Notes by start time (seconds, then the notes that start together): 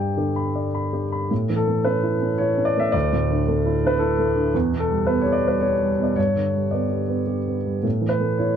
Already playing: G2 G4 D5
0.00 G5
0.17 D3 G4
0.36 B5
0.55 D5
0.74 B5
0.93 G4
1.12 B5
1.31 A2
1.50 E3
1.56 A4
1.67 A3
1.84 C#4 B4
2.03 E4
2.22 C#4
2.38 E4 C#5
2.57 C#4
2.65 D5
2.76 A3 E5
2.92 D2 D5
3.13 A2
3.30 D3
3.48 A3
3.66 E4
3.84 D4 B4
3.99 E4 A4
4.19 A3
4.36 D3
4.54 E2
4.72 B2
4.80 A4
4.90 G3
5.07 B2 B4
5.21 C#5
5.26 G4
5.32 D5
5.44 G3 B4
5.61 G4 C#5
5.82 G3
5.99 B2
6.03 D5
6.16 G2 C#5
6.36 D3
6.54 G3
6.71 B3 D5
6.90 G4
7.08 B3
7.27 G4
7.47 B3
7.65 G3
7.83 A2
8.01 E3
8.09 B4
8.20 A3
8.38 E4 C#5